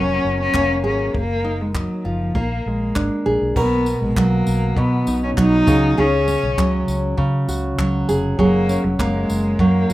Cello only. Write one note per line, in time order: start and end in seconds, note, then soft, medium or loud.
0.00 0.40 C#4 loud
0.41 0.82 C#4 loud
0.86 1.13 C#4 medium
1.16 1.63 A#3 loud
1.61 1.76 G#3 medium
1.76 2.09 F#3 medium
2.07 2.39 F3 medium
2.37 2.69 A#3 medium
2.67 3.27 G#3 medium
3.57 3.99 B3 medium
4.03 4.19 G#3 medium
4.18 4.79 A#3 medium
4.78 5.23 B3 medium
5.23 5.30 C#4 medium
5.39 6.00 D#4 loud
5.99 6.89 C#4 loud
8.40 8.86 A#3 medium
8.85 9.00 F#3 medium
9.00 9.63 G#3 medium
9.61 9.93 A#3 medium